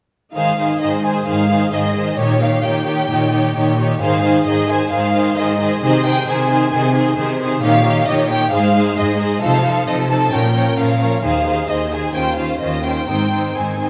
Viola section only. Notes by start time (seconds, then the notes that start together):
0.35 D#3 D#4
0.58 D#3 D#4
0.81 D#3 D#4
1.04 D#3 D#4
1.27 D#3 D#4
1.50 D#3 D#4
1.73 D#3 D#4
1.96 D#3 D#4
2.18 D#3 D#4
2.41 D#3 D#4
2.64 D#3 D#4
2.87 D#3 D#4
3.10 D#3 D#4
3.33 D#3 D#4
3.56 D#3 D#4
3.78 D#3 D#4
4.02 D#3 D#4
4.24 D#3 D#4
4.46 D#3 D#4
4.69 D#3 D#4
4.92 D#3 D#4
5.14 D#3 D#4
5.37 D#3 D#4
5.59 D#3 D#4
5.82 D#3 D#4
6.04 D#3 D#4
6.27 D#3 D#4
6.50 D#3 D#4
6.72 D#3 D#4
6.95 D#3 D#4
7.18 D#3 D#4
7.40 D#3 D#4
7.63 D#3 D#4
7.85 D#3 D#4
8.08 D#3 D#4
8.30 D#3 D#4
8.52 G#3 D#4
8.74 G#3 D#4
8.97 G#3 D#4
9.19 G#3 D#4
9.42 F3 D#4
9.64 F3 D#4
9.87 F3 D#4
10.10 F3 D#4
10.32 F3 C#4
10.54 F3 C#4
10.77 F3 C#4
11.00 F3 C#4
11.23 D#3 D#4
11.46 D#3 D#4
11.68 D#3 D#4
11.91 D#3 D#4
12.14 D#3 C#4
12.38 D#3 C#4
12.60 D#3 C#4
12.84 D#3 C#4
13.08 D#3 C4
13.32 D#3 C4
13.55 D#3 C4
13.79 D#3 C4